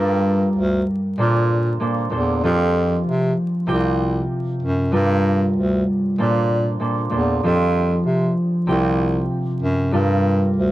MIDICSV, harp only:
0, 0, Header, 1, 2, 480
1, 0, Start_track
1, 0, Key_signature, -2, "minor"
1, 0, Tempo, 625000
1, 1869, Time_signature, 4, 2, 24, 8
1, 8230, End_track
2, 0, Start_track
2, 0, Title_t, "Harp"
2, 0, Program_c, 0, 46
2, 0, Note_on_c, 0, 43, 80
2, 0, Note_on_c, 0, 55, 88
2, 0, Note_on_c, 0, 65, 79
2, 0, Note_on_c, 0, 69, 80
2, 0, Note_on_c, 0, 70, 92
2, 905, Note_on_c, 0, 46, 94
2, 913, Note_on_c, 0, 58, 85
2, 915, Note_off_c, 0, 69, 0
2, 915, Note_on_c, 0, 62, 86
2, 918, Note_on_c, 0, 69, 80
2, 922, Note_on_c, 0, 72, 100
2, 947, Note_off_c, 0, 43, 0
2, 947, Note_off_c, 0, 55, 0
2, 964, Note_off_c, 0, 70, 0
2, 1360, Note_off_c, 0, 58, 0
2, 1362, Note_off_c, 0, 62, 0
2, 1364, Note_off_c, 0, 69, 0
2, 1366, Note_off_c, 0, 72, 0
2, 1371, Note_off_c, 0, 46, 0
2, 1381, Note_on_c, 0, 46, 75
2, 1385, Note_on_c, 0, 58, 71
2, 1388, Note_on_c, 0, 62, 68
2, 1392, Note_on_c, 0, 69, 68
2, 1396, Note_on_c, 0, 72, 80
2, 1606, Note_off_c, 0, 46, 0
2, 1609, Note_off_c, 0, 58, 0
2, 1614, Note_off_c, 0, 62, 0
2, 1615, Note_on_c, 0, 46, 75
2, 1616, Note_off_c, 0, 69, 0
2, 1617, Note_off_c, 0, 72, 0
2, 1619, Note_on_c, 0, 58, 66
2, 1622, Note_on_c, 0, 62, 63
2, 1625, Note_on_c, 0, 69, 72
2, 1630, Note_on_c, 0, 72, 84
2, 1849, Note_off_c, 0, 58, 0
2, 1851, Note_off_c, 0, 62, 0
2, 1852, Note_off_c, 0, 69, 0
2, 1855, Note_off_c, 0, 72, 0
2, 1867, Note_on_c, 0, 53, 87
2, 1872, Note_off_c, 0, 65, 0
2, 1875, Note_on_c, 0, 65, 79
2, 1877, Note_on_c, 0, 67, 79
2, 1881, Note_on_c, 0, 69, 81
2, 1884, Note_on_c, 0, 72, 106
2, 1907, Note_off_c, 0, 46, 0
2, 2816, Note_on_c, 0, 48, 94
2, 2820, Note_off_c, 0, 65, 0
2, 2820, Note_on_c, 0, 60, 86
2, 2823, Note_on_c, 0, 65, 87
2, 2824, Note_off_c, 0, 67, 0
2, 2827, Note_on_c, 0, 67, 78
2, 2831, Note_on_c, 0, 79, 106
2, 2867, Note_off_c, 0, 53, 0
2, 3404, Note_off_c, 0, 72, 0
2, 3567, Note_off_c, 0, 69, 0
2, 3777, Note_on_c, 0, 43, 85
2, 3781, Note_on_c, 0, 55, 86
2, 3782, Note_off_c, 0, 65, 0
2, 3785, Note_on_c, 0, 65, 80
2, 3788, Note_on_c, 0, 69, 82
2, 3792, Note_on_c, 0, 70, 98
2, 3827, Note_off_c, 0, 48, 0
2, 4023, Note_off_c, 0, 79, 0
2, 4635, Note_off_c, 0, 67, 0
2, 4749, Note_on_c, 0, 46, 95
2, 4753, Note_on_c, 0, 58, 86
2, 4757, Note_off_c, 0, 69, 0
2, 4757, Note_on_c, 0, 62, 86
2, 4760, Note_on_c, 0, 69, 83
2, 4764, Note_on_c, 0, 72, 102
2, 4787, Note_off_c, 0, 43, 0
2, 4787, Note_off_c, 0, 55, 0
2, 4806, Note_off_c, 0, 70, 0
2, 5124, Note_off_c, 0, 60, 0
2, 5201, Note_off_c, 0, 58, 0
2, 5203, Note_off_c, 0, 62, 0
2, 5205, Note_off_c, 0, 69, 0
2, 5207, Note_off_c, 0, 72, 0
2, 5211, Note_off_c, 0, 46, 0
2, 5220, Note_on_c, 0, 46, 77
2, 5224, Note_on_c, 0, 58, 70
2, 5228, Note_on_c, 0, 62, 67
2, 5232, Note_on_c, 0, 69, 70
2, 5235, Note_on_c, 0, 72, 76
2, 5445, Note_off_c, 0, 46, 0
2, 5448, Note_off_c, 0, 58, 0
2, 5453, Note_off_c, 0, 62, 0
2, 5454, Note_on_c, 0, 46, 75
2, 5455, Note_off_c, 0, 69, 0
2, 5457, Note_off_c, 0, 72, 0
2, 5457, Note_on_c, 0, 58, 66
2, 5461, Note_on_c, 0, 62, 66
2, 5465, Note_on_c, 0, 69, 68
2, 5469, Note_on_c, 0, 72, 87
2, 5688, Note_off_c, 0, 58, 0
2, 5690, Note_off_c, 0, 62, 0
2, 5692, Note_off_c, 0, 69, 0
2, 5694, Note_off_c, 0, 72, 0
2, 5709, Note_on_c, 0, 53, 86
2, 5710, Note_off_c, 0, 65, 0
2, 5713, Note_on_c, 0, 65, 78
2, 5716, Note_on_c, 0, 67, 78
2, 5719, Note_on_c, 0, 69, 83
2, 5723, Note_on_c, 0, 72, 104
2, 5747, Note_off_c, 0, 46, 0
2, 6657, Note_on_c, 0, 48, 92
2, 6661, Note_on_c, 0, 60, 86
2, 6662, Note_off_c, 0, 65, 0
2, 6665, Note_off_c, 0, 67, 0
2, 6665, Note_on_c, 0, 65, 85
2, 6668, Note_on_c, 0, 67, 83
2, 6672, Note_on_c, 0, 79, 106
2, 6707, Note_off_c, 0, 53, 0
2, 7243, Note_off_c, 0, 72, 0
2, 7406, Note_off_c, 0, 69, 0
2, 7619, Note_on_c, 0, 43, 83
2, 7622, Note_on_c, 0, 55, 90
2, 7623, Note_off_c, 0, 65, 0
2, 7626, Note_on_c, 0, 65, 79
2, 7630, Note_on_c, 0, 69, 81
2, 7634, Note_on_c, 0, 70, 95
2, 7667, Note_off_c, 0, 48, 0
2, 7865, Note_off_c, 0, 79, 0
2, 8230, Note_off_c, 0, 43, 0
2, 8230, Note_off_c, 0, 55, 0
2, 8230, Note_off_c, 0, 60, 0
2, 8230, Note_off_c, 0, 65, 0
2, 8230, Note_off_c, 0, 67, 0
2, 8230, Note_off_c, 0, 69, 0
2, 8230, Note_off_c, 0, 70, 0
2, 8230, End_track
0, 0, End_of_file